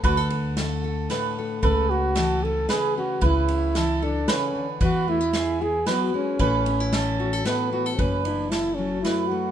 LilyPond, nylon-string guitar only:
\new Staff \with { instrumentName = "Nylon-string guitar" } { \time 3/4 \key a \major \tempo 4 = 113 << { fis'16 a'16 a'4 a'8 a'8 a'8 | cis'8 cis'4 cis'8 cis'8 cis'8 | cis'8 cis'4 a'4. | e'8 a16 b16 r8 e'4. |
<e cis' e' a'>8 cis'16 e'8. fis'16 a'16 e'8 fis'16 a'16 | r8 e'4. a8 a8 | } \\ { <d a>4 a4 a,4 | cis4 e4 cis4 | cis4 e4 cis8 d8 | e4 b4 fis8 gis8 |
a,4 e4 a,4 | fis,4. fis4. | } >> }